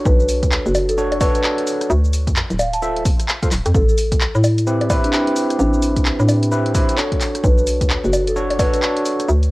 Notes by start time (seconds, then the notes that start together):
Already playing: D4 F#4 A4 C#5
0.05 B1 B4, kick, cabasa
0.20 B4, cabasa
0.29 open hi-hat, cabasa
0.43 D2, kick, closed hi-hat, cabasa
0.52 clap, cabasa
0.66 F#1 F#4, cabasa
0.75 open hi-hat, high bongo, cabasa
0.89 A4, closed hi-hat, cabasa
0.98 D4 F#4 A4 C#5, cabasa
1.12 closed hi-hat, high bongo
1.21 D4 F#4 A4 B4 C#5, kick, open hi-hat, high bongo, cabasa
1.35 B4, cross-stick, closed hi-hat, cabasa
1.44 D4 F#4 A4 C#5, clap, cabasa
1.58 closed hi-hat
1.67 open hi-hat, cabasa
1.81 cross-stick, closed hi-hat, cabasa
1.90 D2, cabasa
2.04 cabasa
2.13 open hi-hat, cabasa
2.27 F2, kick, closed hi-hat, cabasa
2.36 clap, cabasa
2.50 D1, closed hi-hat, cabasa
2.59 F5, open hi-hat, high bongo, cabasa
2.73 A5, closed hi-hat, cabasa
2.82 F4 A4 C5 E5 A5, cabasa
2.97 closed hi-hat
3.05 kick, open hi-hat, cabasa
3.20 cross-stick, closed hi-hat, cabasa
3.29 clap, cabasa
3.43 F4 A4 C5 F5, kick, closed hi-hat, cabasa
3.52 D1, clap, open hi-hat, cabasa
3.66 F2, cross-stick, closed hi-hat, cabasa
3.75 A1 A4, kick, cabasa
3.89 A4, cabasa
3.98 open hi-hat, cabasa
4.12 C2, kick, closed hi-hat, cabasa
4.21 clap, cabasa
4.35 A2 E4, cabasa
4.44 open hi-hat, high bongo, cabasa
4.58 closed hi-hat, cabasa
4.67 C4 E4 G4 B4, cabasa
4.81 closed hi-hat, high bongo
4.90 C4 E4 G4 B4, kick, open hi-hat, high bongo, cabasa
5.04 D4, cross-stick, closed hi-hat, cabasa
5.13 C4 D4 E4 G4 B4, clap, cabasa
5.27 closed hi-hat
5.36 open hi-hat, cabasa
5.50 cross-stick, closed hi-hat, cabasa
5.59 A1 D4, cabasa
5.73 D4, cabasa
5.82 open hi-hat, cabasa
5.96 C2, kick, closed hi-hat, cabasa
6.05 clap, cabasa
6.20 A2 D4, cabasa
6.29 open hi-hat, high bongo, cabasa
6.43 closed hi-hat, cabasa
6.51 C4 E4 G4 B4, cabasa
6.66 closed hi-hat
6.75 C4 E4 G4 B4, kick, open hi-hat, cabasa
6.89 cross-stick, closed hi-hat, cabasa
6.98 D4 F#4 A4 C#5, clap, cabasa
7.12 kick, closed hi-hat
7.21 clap, open hi-hat, cabasa
7.35 cross-stick, closed hi-hat, cabasa
7.44 B1 B4, kick, cabasa
7.58 B4, cabasa
7.67 open hi-hat, cabasa
7.81 D2, kick, closed hi-hat, cabasa
7.90 clap, cabasa
8.04 F#1 F#4, cabasa
8.13 open hi-hat, high bongo, cabasa
8.27 A4, closed hi-hat, cabasa
8.36 D4 F#4 A4 C#5, cabasa
8.50 closed hi-hat, high bongo
8.59 D4 F#4 A4 B4 C#5, kick, open hi-hat, high bongo, cabasa
8.73 B4, cross-stick, closed hi-hat, cabasa
8.82 D4 F#4 A4 C#5, clap, cabasa
8.97 closed hi-hat
9.05 open hi-hat, cabasa
9.20 cross-stick, closed hi-hat, cabasa
9.28 D2, cabasa
9.43 closed hi-hat, cabasa